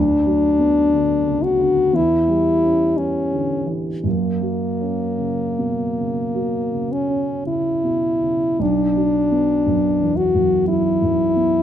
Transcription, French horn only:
Already playing: D4
1.44 F#4
1.95 E4
2.98 C#4
4.06 A#3
6.92 C#4
7.47 E4
8.61 D4
10.17 F#4
10.68 E4

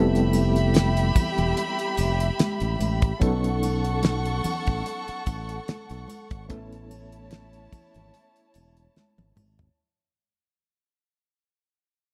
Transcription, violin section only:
Already playing: G4 E5 B5
3.21 A4 F#5 C#6
6.50 E4 C#5 A5

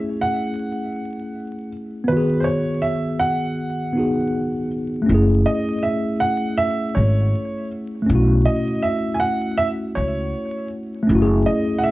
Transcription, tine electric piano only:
Already playing: A3 C#4 E4 G#4
2.04 B3
2.09 D#3 F#4
2.17 G#4
3.93 B3 D#4
3.97 F#4 G#4
5.02 A3
5.06 C#4
5.10 E4
5.15 G#4
8.02 A3
8.06 C#4
8.11 E4
8.15 F#4
11.03 A3
11.07 C#4
11.11 E4 F#4
11.22 G#4

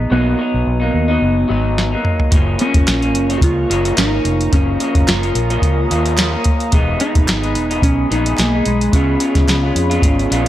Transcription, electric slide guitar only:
0.12 B3
2.61 C#4
3.38 F#4
3.43 F4
3.98 D#4
4.53 C#4
5.07 F4
7.01 D#4
7.83 C#4
8.12 D#4
8.40 A#3
8.67 G#3
8.94 C#4

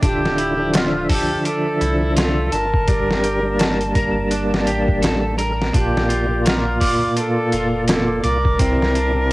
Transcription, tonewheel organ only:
0.02 D3 D4 F4 E5
0.57 D3 D4
0.62 F3 E5
2.52 D3 D4 F4 E5
2.87 G3 D4 G4 A#4
3.43 G3 D4
3.47 A#3 A5
5.37 G3 D4 A4 A#4
5.73 A#2 A#3 F4 D5
6.28 A#2 A#3
6.33 F4 D5
8.23 A#2 A#3 F4 D5
8.58 C3 C4 E4 D5
9.14 C3 C4
9.18 E4 D5

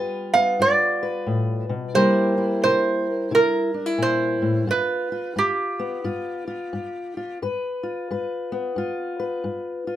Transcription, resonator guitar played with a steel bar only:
0.34 F5
0.62 D5
1.95 C5
2.64 C5
3.35 A#4
4.02 C5
4.71 B4
5.38 G4

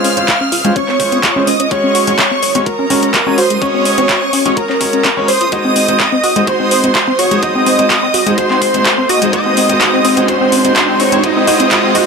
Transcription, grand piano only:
Already playing: G#3 C#4 F4 C5
0.17 G#3 C#4 F4 C5
0.65 G#3 C#4 F4 C5
1.00 G#3 C#4 F4 C5
1.36 G#3 C#4 F4 C5
1.71 G#3 C#4 F#4 C#5
2.07 G#3 C#4 F#4 C#5
2.55 G#3 C#4 F#4 C#5
2.90 G#3 C#4 F#4 C#5
3.26 G#3 C#4 F#4 C#5
3.62 G#3 C#4 F#4 C#5
3.98 G#3 C#4 F#4 C#5
4.46 G#3 C#4 F#4 C#5
4.81 G#3 C#4 F#4 C#5
5.17 G#3 C#4 F#4 C#5
5.52 G#3 D#4 F#4 C5
5.88 G#3 D#4 F#4 C5
6.36 G#3 D#4 F#4 C5
6.47 G#3 D#4 F#4 C5
6.84 G#3 D#4 F#4 C5
7.31 G#3 D#4 F#4 C5
7.43 G#3 D#4 F#4 C5
7.79 G#3 D#4 F#4 C5
8.27 G#3 D#4 F#4 C5
8.38 G#3 D#4 F#4 C5
8.74 G#3 D#4 F#4 C5
9.22 G#3 D#4 F#4 C5
9.33 G#3 D#4 F#4 C5
9.69 G#3 D#4 F#4 C5
9.81 G#3 D#4 F#4 C5
10.17 G#3 D#4 F#4 C5
10.28 G#3 D#4 F#4 C5
10.65 G#3 D#4 F#4 C5
10.76 G#3 D#4 F#4 C5
11.12 G#3 D#4 F#4 C5
11.24 G#3 D#4 F#4 C5
11.47 G#3 D#4 F#4 C5
11.71 G#3 D#4 F#4 C5
11.95 G#3 D#4 F#4 C5

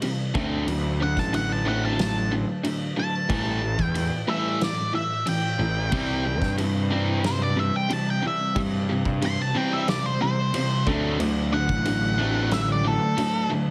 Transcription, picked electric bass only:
0.35 D2
0.67 D2
1.17 A1
3.30 A1
3.79 E2
5.59 A1
5.92 C2
6.42 G2
8.56 G2
9.05 G2
10.87 D2
11.20 D2
11.69 A1

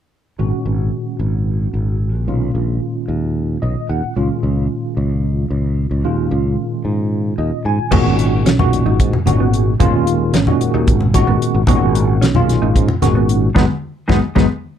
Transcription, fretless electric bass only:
0.39 G#1
0.66 G#1
1.19 G#1
1.74 G#1
2.14 A#1
2.28 B1
2.55 A#1
3.08 D#2
3.63 B1
3.89 D#2
4.03 muted fretless electric bass stroke
4.16 C#2
4.43 C#2
4.97 C#2
5.50 C#2
5.91 C#2
6.04 D#2
6.31 C#2
6.85 G#2
7.38 D#2
7.65 G#2
7.79 muted fretless electric bass stroke
7.92 G#1
8.04 G#1
8.45 B1
8.86 G#1
9.00 G#2
9.13 muted fretless electric bass stroke
9.26 G#1
9.80 G#1
9.93 D#2
10.34 G#1
10.62 muted fretless electric bass stroke
10.74 D#2
10.88 G#1
11.28 G#1
11.41 muted fretless electric bass stroke
11.54 G#1
11.69 G#1
11.81 G#1
12.22 B1
12.63 G#1
12.76 G#2
12.89 muted fretless electric bass stroke
13.02 G#1
13.56 G#1
14.10 G#1
14.36 G#1

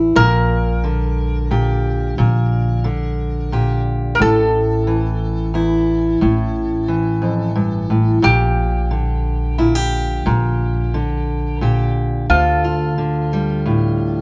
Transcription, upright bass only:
Already playing: A1
0.18 A#1
2.19 A#1
4.21 A1
6.22 A1
8.25 A#1
10.27 A#1
12.30 D2

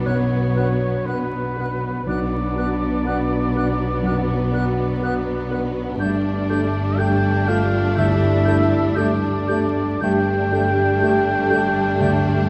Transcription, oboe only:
0.06 C#5
1.06 B4
2.07 D5
6.01 D5
6.98 G5
7.48 F5
7.98 E5
8.97 D5
10.03 G5

